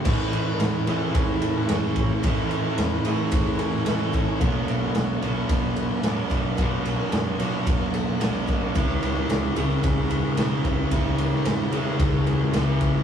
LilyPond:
<<
  \new Staff \with { instrumentName = "Twelve-string acoustic guitar" } { \time 4/4 \key a \major \tempo 4 = 111 e4 cis'8 gis'8 cis'8 a8 gis'8 cis'8 | e4 cis'8 gis'8 cis'8 a8 gis'8 cis'8 | a4 d'8 fis'8 d'8 a8 fis'8 d'8 | a4 d'8 fis'8 d'8 a8 fis'8 d'8 |
e4 cis'8 gis'8 cis'8 b8 gis'8 cis'8 | e4 cis'8 gis'8 cis'8 b8 gis'8 cis'8 | }
  \new Staff \with { instrumentName = "Overdriven electric guitar" } { \clef bass \time 4/4 \key a \major <a, e a cis' e'>4. <a, e a cis' e'>4. <a, e a cis' e'>4 | <a, e a cis' e'>4. <a, e a cis' e'>4. <a, e a cis' e'>4 | <b, fis b d'>4. <b, fis b d'>4. <b, fis b d'>4 | <b, fis b d'>4. <b, fis b d'>4. <b, fis b d'>4 |
<cis e gis cis'>4. <cis e gis cis'>4. <cis e gis cis'>4 | <cis e gis cis'>4. <cis e gis cis'>4. <cis e gis cis'>4 | }
  \new Staff \with { instrumentName = "Distorted electric guitar" } { \clef bass \time 4/4 \key a \major <a, e a>4. <a, e a>2~ <a, e a>8 | <a, e a>4. <a, e a>2~ <a, e a>8 | <b, fis b>4. <b, fis b>2~ <b, fis b>8 | <b, fis b>4. <b, fis b>2~ <b, fis b>8 |
<cis gis cis'>4. <cis gis cis'>2~ <cis gis cis'>8 | <cis gis cis'>4. <cis gis cis'>2~ <cis gis cis'>8 | }
  \new Staff \with { instrumentName = "Fingered electric bass" } { \clef bass \time 4/4 \key a \major a,,8 a,,8 a,,8 a,,8 a,,4 fis,8 a,,8 | a,,4 e,8 a,8 a,,4 a,,4 | b,,8 b,,8 b,,8 b,,8 b,,4 a,8 b,,8 | b,,4 fis,8 b,8 b,,4 b,,4 |
cis,8 cis,8 cis,8 cis,8 cis,4 b,8 cis,8 | cis,4 gis,8 cis8 cis,4 cis,4 | }
  \new DrumStaff \with { instrumentName = "Drums" } \drummode { \time 4/4 <cymc bd>8 cymr8 <cymr sn>8 cymr8 <bd cymr>8 cymr8 <cymr sn>8 <bd cymr>8 | <bd cymr>8 cymr8 <cymr sn>8 cymr8 <bd cymr>8 cymr8 <cymr sn>8 <bd cymr>8 | <bd cymr>8 cymr8 <cymr sn>8 cymr8 <bd cymr>8 cymr8 <cymr sn>8 <bd cymr>8 | <bd cymr>8 cymr8 <cymr sn>8 cymr8 <bd cymr>8 cymr8 <cymr sn>8 <bd cymr>8 |
<bd cymr>8 cymr8 <cymr sn>8 cymr8 <bd cymr>8 cymr8 <cymr sn>8 <bd cymr>8 | <bd cymr>8 cymr8 <cymr sn>8 cymr8 <bd cymr>8 cymr8 <cymr sn>8 <bd cymr>8 | }
>>